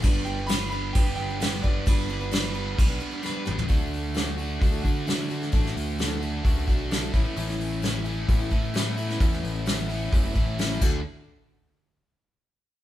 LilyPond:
<<
  \new Staff \with { instrumentName = "Grand piano" } { \time 4/4 \key d \major \tempo 4 = 131 r8 g''8 b''8 b''8 g''8 g''4 d''8~ | d''2.~ d''8 r8 | r1 | r1 |
r1 | r1 | r1 | }
  \new Staff \with { instrumentName = "Steel-string acoustic guitar" } { \time 4/4 \key d \major <g b d' b'>8 <g b d' b'>16 <b d' b'>16 <g b d' b'>16 <b d' b'>16 <g b d' b'>8. <b d' b'>16 <g b d' b'>16 <b d' b'>16 <g b d' b'>8 <g b d' b'>8 | <g b d' b'>8 <g b d' b'>16 <b d' b'>16 <g b d' b'>16 <b d' b'>16 <g b d' b'>8. <b d' b'>16 <g b d' b'>16 <b d' b'>16 <g b d' b'>8 <g b d' b'>8 | <d d' fis' a'>16 <d' fis' a'>8. <d d' fis' a'>16 <d' fis' a'>16 <d d' fis' a'>8. <d' fis' a'>16 <d d' fis' a'>8 <d d' fis' a'>8 <d d' fis' a'>16 <d' fis' a'>16 | <d d' fis' a'>16 <d' fis' a'>8. <d d' fis' a'>16 <d' fis' a'>16 <d d' fis' a'>8. <d' fis' a'>16 <d d' fis' a'>8 <d d' fis' a'>8 <a b cis' e'>16 <b cis' e'>16 |
<a, a b cis' e'>16 <b cis' e'>8. <a, a b cis' e'>8 <a b cis' e'>8. <b cis' e'>16 <a b cis' e'>8 <a, a b cis' e'>8 <a b cis' e'>16 <b cis' e'>16 | <a, a b cis' e'>16 <b cis' e'>8. <a, a b cis' e'>8 <a b cis' e'>8. <b cis' e'>16 <a b cis' e'>8 <a, a b cis' e'>8 <d d' fis' a'>8 | r1 | }
  \new Staff \with { instrumentName = "Overdriven electric guitar" } { \time 4/4 \key d \major <g b d' b'>4 <g b d' b'>8 <b d' b'>8 <g b d' b'>4 <g b d' b'>8 <b d' b'>8 | <g b d' b'>4 <g b d' b'>8 <b d' b'>8 <g b d' b'>4 <g b d' b'>8 <b d' b'>8 | <d a d' fis'>4. <a d' fis'>8 <d a d' fis'>8 <a d' fis'>8 <d a d' fis'>8 <a d' fis'>8 | <d a d' fis'>4. <a d' fis'>8 <d a d' fis'>8 <a d' fis'>8 <d a d' fis'>8 <a, e a cis' e'>8 |
<a, e a cis' e'>4. <a cis' e'>8 <a, e a cis' e'>8 <a cis' e'>8 <e a cis' e'>8 <a cis' e'>8 | <a, e a cis' e'>4. <a cis' e'>8 <a, e a cis' e'>8 <a cis' e'>8 <e a cis' e'>8 <d d' fis' a'>8 | r1 | }
  \new Staff \with { instrumentName = "Picked electric bass" } { \clef bass \time 4/4 \key d \major g,,2 g,,8 g,,4 g,,8 | g,,2 b,,8 r4 a,,8 | d,2 d,8 d4. | a,,8 d,4. cis,8 b,,4 a,,16 r16 |
a,,2 a,,8 a,4. | e,8 a,,4. fis,,8 a,,4 d,8 | r1 | }
  \new DrumStaff \with { instrumentName = "Drums" } \drummode { \time 4/4 <cymc bd>4 <cymc sn>4 <cymc bd>4 <cymc sn>8 bd8 | <cymc bd>4 <cymc sn>4 <cymc bd>4 sn8 toml16 tomfh16 | <hho bd>8 hho8 <hho sn>8 hho8 <hho bd>8 <hho bd>8 <hho sn>8 hho16 sn16 | <hho bd>16 sn16 hho8 <hho sn>8 hho8 <hho bd>8 <hho bd>8 <hho sn>8 <hho bd>8 |
hho16 sn16 hho8 <hho sn>8 hho8 <hho bd>8 <hho bd>8 <hho sn>8 hho16 sn16 | <hho bd>16 sn16 hho8 <hho sn>8 hho8 <hho bd>8 <hho bd>8 <hho sn>8 <cymc bd>8 | r4 r4 r4 r4 | }
>>